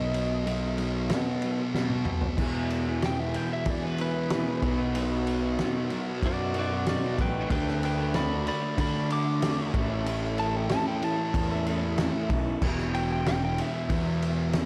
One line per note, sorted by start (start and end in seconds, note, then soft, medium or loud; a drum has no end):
0.00 1.12 B1 loud
0.00 0.10 B2 medium
0.00 0.11 F#3 medium
0.00 0.47 B3 loud
0.00 1.71 D#5 medium
0.13 0.43 B2 medium
0.13 0.43 F#3 medium
0.13 ride medium
0.44 0.74 B2 medium
0.44 0.75 F#3 medium
0.44 0.78 B3 loud
0.44 ride medium
0.77 1.07 B2 medium
0.77 1.07 F#3 medium
0.77 1.10 B3 loud
0.77 ride medium
1.09 1.39 B2 medium
1.09 1.60 B2 loud
1.09 1.39 F#3 medium
1.09 1.74 B3 loud
1.09 snare loud
1.09 ride medium
1.42 1.71 B2 medium
1.42 1.72 F#3 medium
1.42 ride medium
1.74 2.03 B2 medium
1.74 2.24 B2 loud
1.74 2.03 F#3 medium
1.74 2.05 B3 medium
1.74 snare medium
1.90 high tom medium
2.05 2.35 B2 medium
2.05 2.35 F#3 medium
2.05 2.36 B3 medium
2.05 mid tom medium
2.21 floor tom medium
2.37 2.99 E2 medium
2.37 3.36 E2 medium
2.37 3.00 B2 medium
2.37 2.87 E3 loud
2.37 2.87 B3 medium
2.37 2.86 E4 medium
2.37 2.84 G#4 medium
2.37 kick loud
2.37 crash loud
2.70 ride medium
2.85 3.01 E3 medium
2.85 3.02 B3 medium
2.85 3.02 E4 medium
2.85 3.03 G#4 medium
3.01 3.81 E2 loud
3.01 3.82 B2 medium
3.01 3.49 E3 medium
3.01 3.49 B3 medium
3.01 3.49 E4 medium
3.01 3.48 G#4 medium
3.01 snare loud
3.01 ride medium
3.06 3.20 G5 medium
3.20 3.36 E5 medium
3.33 4.28 E2 medium
3.33 4.29 B2 medium
3.33 4.28 E3 medium
3.33 3.51 G5 medium
3.33 ride medium
3.49 3.70 E5 medium
3.49 muted clean electric guitar stroke soft
3.65 4.60 E2 medium
3.65 4.61 B2 medium
3.65 4.40 E3 loud
3.65 4.61 E3 medium
3.65 kick medium
3.65 ride medium
3.70 3.85 D5 medium
3.82 3.97 E3 medium
3.82 3.98 B3 medium
3.82 3.99 E4 medium
3.82 4.00 G#4 medium
3.82 3.99 B4 medium
3.98 4.14 E3 medium
3.98 4.14 B3 medium
3.98 4.14 E4 medium
3.98 4.14 G#4 medium
3.98 5.88 B4 loud
3.98 ride medium
4.15 muted clean electric guitar stroke soft
4.30 4.61 E2 medium
4.30 4.61 B2 medium
4.30 4.61 E3 medium
4.30 4.62 B3 medium
4.30 4.62 E4 medium
4.30 4.62 G#4 loud
4.30 snare loud
4.30 ride medium
4.62 5.61 B1 medium
4.62 4.93 B2 medium
4.62 4.95 F#3 medium
4.62 4.80 B3 loud
4.62 4.79 D#4 loud
4.62 4.78 F#4 loud
4.62 kick loud
4.62 ride medium
4.78 4.94 B3 medium
4.78 4.96 D#4 medium
4.78 4.97 F#4 medium
4.94 5.57 B2 medium
4.94 5.59 F#3 medium
4.94 5.45 B3 medium
4.94 5.44 D#4 medium
4.94 5.43 F#4 loud
4.94 ride medium
5.27 ride medium
5.43 5.59 B3 medium
5.43 5.59 D#4 medium
5.43 5.61 F#4 medium
5.58 6.39 B2 medium
5.58 6.07 F#3 medium
5.58 6.06 B3 medium
5.58 6.06 D#4 medium
5.58 6.06 F#4 loud
5.58 snare loud
5.58 ride medium
5.90 7.18 B2 medium
5.90 7.17 F#3 medium
5.90 7.17 B3 medium
5.90 ride medium
6.07 muted clean electric guitar stroke soft
6.22 6.97 F#2 medium
6.22 6.56 F#4 medium
6.22 kick medium
6.22 ride medium
6.27 6.56 D5 medium
6.38 6.54 B3 medium
6.38 6.55 D#4 medium
6.38 6.55 F#4 medium
6.54 7.18 B2 medium
6.54 6.70 F#3 medium
6.54 6.70 B3 medium
6.54 6.70 D#4 medium
6.54 6.69 F#4 medium
6.54 ride medium
6.59 6.87 F#4 medium
6.59 6.88 D5 loud
6.71 muted clean electric guitar stroke medium
6.85 7.48 B2 medium
6.85 7.16 F#3 medium
6.85 7.17 B3 medium
6.85 7.18 D#4 loud
6.85 7.19 F#4 loud
6.85 snare loud
6.85 ride medium
6.89 7.18 F#4 medium
6.89 7.19 D5 medium
7.17 7.43 A1 medium
7.17 7.48 F#3 medium
7.17 7.36 B3 medium
7.17 7.34 D#4 medium
7.17 7.32 F#4 loud
7.17 7.50 B4 medium
7.17 kick medium
7.17 ride medium
7.22 7.51 G5 medium
7.33 7.50 B3 medium
7.33 7.49 D#4 medium
7.33 7.48 F#4 medium
7.49 8.49 D2 loud
7.49 8.11 D3 loud
7.49 8.00 A3 loud
7.49 7.98 D4 medium
7.49 7.81 B4 medium
7.49 7.82 G5 medium
7.49 kick loud
7.49 ride medium
7.67 snare soft
7.83 8.14 B4 medium
7.83 8.15 G5 medium
7.83 ride medium
7.97 8.13 A3 medium
7.97 8.14 D4 medium
7.97 8.14 F#4 medium
8.13 8.94 D3 medium
8.13 8.62 A3 medium
8.13 8.61 D4 loud
8.13 8.61 F#4 loud
8.13 8.45 D5 medium
8.13 8.46 B5 medium
8.13 snare loud
8.13 ride medium
8.45 9.40 D3 medium
8.45 9.41 A3 medium
8.45 9.40 D4 medium
8.45 8.77 D5 medium
8.45 8.79 B5 medium
8.45 ride medium
8.62 muted clean electric guitar stroke soft
8.77 9.72 D3 medium
8.77 9.52 D3 loud
8.77 9.73 A3 medium
8.77 9.73 D4 medium
8.77 9.09 D5 medium
8.77 9.11 B5 medium
8.77 kick medium
8.77 ride loud
8.93 9.09 A3 medium
8.93 9.10 D4 medium
8.93 9.11 F#4 medium
9.09 9.39 D3 medium
9.09 9.26 A3 medium
9.09 9.26 D4 medium
9.09 9.25 F#4 medium
9.09 9.74 D6 loud
9.09 ride medium
9.27 muted clean electric guitar stroke medium
9.41 9.72 D3 medium
9.41 9.72 A3 loud
9.41 9.73 D4 medium
9.41 9.73 F#4 loud
9.41 snare loud
9.41 ride loud
9.73 10.73 A1 medium
9.73 10.04 A2 medium
9.73 10.05 E3 medium
9.73 9.91 A3 loud
9.73 9.89 C#4 loud
9.73 9.88 E4 loud
9.73 kick loud
9.73 ride medium
9.89 10.05 A3 medium
9.89 10.06 C#4 medium
9.89 10.06 E4 medium
10.05 10.68 A2 medium
10.05 10.69 E3 medium
10.05 10.55 A3 medium
10.05 10.54 C#4 medium
10.05 10.52 E4 medium
10.05 ride medium
10.38 10.56 A5 medium
10.38 ride medium
10.54 10.70 A3 medium
10.54 10.71 C#4 medium
10.54 10.72 E4 medium
10.54 10.71 G5 medium
10.69 11.50 A2 medium
10.69 11.18 E3 medium
10.69 11.17 A3 medium
10.69 11.18 C#4 medium
10.69 11.17 E4 medium
10.69 10.87 A5 loud
10.69 snare loud
10.69 ride medium
10.88 11.04 G5 medium
11.02 12.30 A2 medium
11.02 12.29 E3 medium
11.02 12.28 A3 medium
11.02 12.28 A5 loud
11.02 ride medium
11.18 muted clean electric guitar stroke medium
11.34 12.08 E2 medium
11.34 kick medium
11.34 ride medium
11.49 11.65 A3 medium
11.49 11.66 C#4 medium
11.49 11.67 E4 medium
11.65 12.29 A2 medium
11.65 11.81 E3 medium
11.65 11.81 A3 medium
11.65 11.81 C#4 medium
11.65 11.80 E4 medium
11.65 ride medium
11.82 muted clean electric guitar stroke soft
11.97 12.60 A2 loud
11.97 12.28 E3 medium
11.97 12.29 A3 loud
11.97 12.30 C#4 medium
11.97 12.31 E4 medium
11.97 snare loud
11.97 ride medium
12.29 12.54 B1 medium
12.29 12.60 E3 medium
12.29 12.47 A3 medium
12.29 12.46 C#4 medium
12.29 12.44 E4 medium
12.29 kick medium
12.29 ride medium
12.45 12.61 A3 medium
12.45 12.61 C#4 medium
12.45 12.60 E4 medium
12.61 13.60 E1 loud
12.61 13.56 E2 medium
12.61 13.88 E2 medium
12.61 13.57 B2 medium
12.61 13.89 B2 loud
12.61 13.57 E3 medium
12.61 13.89 E3 loud
12.61 kick loud
12.61 crash loud
12.78 snare soft
12.94 13.10 G5 medium
12.94 ride medium
13.12 13.27 G5 medium
13.26 13.43 G5 loud
13.26 snare loud
13.26 ride medium
13.45 13.61 G5 medium
13.58 14.51 E2 medium
13.58 14.53 B2 medium
13.58 14.52 E3 medium
13.58 14.65 E5 loud
13.58 ride medium
13.89 14.64 E2 loud
13.89 14.65 E2 medium
13.89 14.65 B2 medium
13.89 14.65 E3 medium
13.89 kick medium
13.89 ride medium
14.22 ride medium
14.53 14.65 E2 medium
14.53 14.65 B2 medium
14.53 14.65 E3 loud
14.53 snare loud
14.53 ride medium